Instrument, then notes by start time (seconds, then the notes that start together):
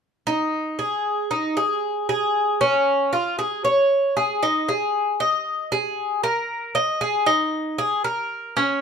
cuban tres
0.27 D#4
0.79 G#4
1.31 D#4
1.57 G#4
2.09 G#4
2.61 C#4
3.13 F4
3.39 G#4
3.65 C#5
4.17 G#4
4.43 D#4
4.69 G#4
5.20 D#5
5.72 G#4
6.23 A#4
6.75 D#5
7.01 G#4
7.26 D#4
7.78 G#4
8.04 A#4
8.57 C#4